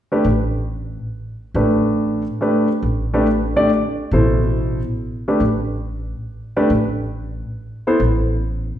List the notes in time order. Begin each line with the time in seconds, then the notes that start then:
0.12 A3 D4 G4 B4
0.24 A1
1.54 A1 A3 D4 G4 B4
2.41 A3 D4 G4 B4
2.83 A1
3.14 A3 D4 G4 B4
3.56 A3 D4 G4 D5
4.11 A1 B2 E4 A4 C5
5.28 A3 D4 G4 B4
5.40 A1
6.56 A3 D4 G4 B4
6.70 A1
7.87 B3 E4 A4 C5
8.00 A1